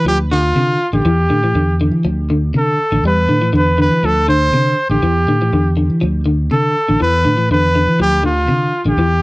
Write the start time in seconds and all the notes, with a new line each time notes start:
0.05 D2 F3 G4
0.31 D3 F4
0.55 C3 D3
0.93 A1 D3 G4
1.05 E2 E3
1.30 A2 D3
1.44 E3
1.54 E2 D3
1.81 D3
1.91 E3
2.04 D2 F3
2.30 D3
2.54 C3 D3 A4
2.92 A1 D3
3.03 E2 G3 B4
3.28 A2 D3
3.42 E3
3.53 E2 D3 B4
3.78 D3 B4
3.90 E3
4.03 D2 F3 A4
4.28 D3 C5
4.52 C3 D3
4.89 A1 D3 G4
5.02 E2 E3
5.27 A2 D3
5.42 E3
5.52 E2 D3
5.77 D3
5.90 E3
6.01 D2 F3
6.26 D3
6.51 C3 D3 A4
6.88 A1 D3
7.00 E2 E3 B4
7.25 A2 D3
7.37 E3
7.50 E2 D3 B4
7.76 D3
7.87 E3
7.99 D2 F3 G4
8.23 D3 F4
8.48 C3 D3
8.85 A1 D3 G4
8.97 E2 E3